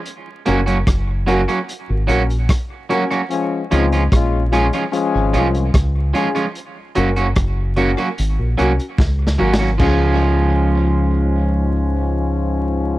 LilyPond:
<<
  \new Staff \with { instrumentName = "Upright piano" } { \time 4/4 \key des \major \tempo 4 = 74 r8 <des' ges' bes'>16 r8. <des' ges' bes'>16 r8 <ges' bes'>16 <des' ges' bes'>16 r8. <des' ges' bes'>16 r16 | r8 <des' f' aes'>16 r8. <des' f' aes'>16 r8 <f' aes'>16 <des' f' aes'>16 r8. <des' f' aes'>16 r16 | r8 <des' ges' bes'>16 r8. <des' ges' bes'>16 r8 <ges' bes'>16 <des' ges' bes'>16 r8. <des' ges' bes'>16 r16 | <des' f' aes'>1 | }
  \new Staff \with { instrumentName = "Clean electric guitar" } { \time 4/4 \key des \major r8 <ges bes des' ges'>16 <ges bes des' ges'>16 r8 <ges bes des' ges'>16 <ges bes des' ges'>16 r8 <ges bes des' ges'>16 r8. <ges bes des' ges'>16 <ges bes des' ges'>16 | r8 <f aes des' f'>16 <f aes des' f'>16 r8 <f aes des' f'>16 <f aes des' f'>16 r8 <f aes des' f'>16 r8. <f aes des' f'>16 <f aes des' f'>16 | r8 <ges bes des' ges'>16 <ges bes des' ges'>16 r8 <ges bes des' ges'>16 <ges bes des' ges'>16 r8 <ges bes des' ges'>16 r8. <ges bes des' ges'>16 <ges bes des' ges'>16 | <f aes des' f'>1 | }
  \new Staff \with { instrumentName = "Trombone section" } { \time 4/4 \key des \major r1 | <f aes des'>8 <aes c' ees'>8 <aes des' f'>8 <aes des' f'>8 <f aes des'>4 r4 | r1 | <aes, f des'>1 | }
  \new Staff \with { instrumentName = "Fingered electric bass" } { \clef bass \time 4/4 \key des \major r8 ges,,8 ges,,8. r8 aes,,16 bes,,8 r4 | r8 des,8 bes,,8. r8 aes,,16 c,8 des,8 r8 | r8 ges,,8 ges,,8. r16 aes,,16 bes,,16 c,16 r16 des,8 aes,,8 | des,1 | }
  \new DrumStaff \with { instrumentName = "Drums" } \drummode { \time 4/4 hh8 hh16 hh16 <hh bd ss>8 hh16 hh16 hh8 hh16 hh16 <hh bd ss>8 hh16 hh16 | hh8 hh16 hh16 <hh bd ss>8 <hh ss>16 hh16 hh8 hh16 hh16 <hh bd ss>8 hh16 hh16 | hh8 hh16 hh16 <hh bd ss>8 hh16 hh16 hh8 hh16 hh16 \tuplet 3/2 { <bd sn>8 sn8 sn8 } | <cymc bd>4 r4 r4 r4 | }
>>